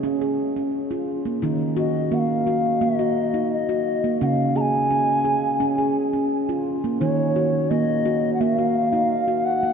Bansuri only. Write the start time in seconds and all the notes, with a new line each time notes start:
1.79 D#5
2.14 F#5
2.19 F5
2.83 D#5
3.52 D#5
4.22 F5 F#5
4.56 A#5
4.61 G#5
7.00 C#5
7.69 D#5
8.34 F#5
8.40 E5
8.57 F5
9.45 F#5